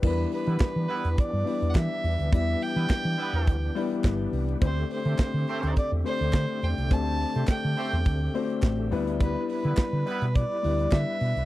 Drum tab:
CC |x---------------|----------------|----------------|----------------|
HH |--oxx-oxx-oxx-ox|x-oxx-oxx-oxx-ox|x-oxx-oxx-oxx-ox|x-oxx-oxx-oxx-ox|
CP |----x-------x---|----x-------x---|----x-------x---|----x-------x---|
SD |----o-------o---|----o-------o---|----o-------o---|----o-------o---|
BD |o---o---o---o---|o---o---o---o---|o---o---o---o---|o---o---o---o---|

CC |----------------|
HH |x-oxx-oxx-oxx-ox|
CP |----x-------x---|
SD |----o-------o---|
BD |o---o---o---o---|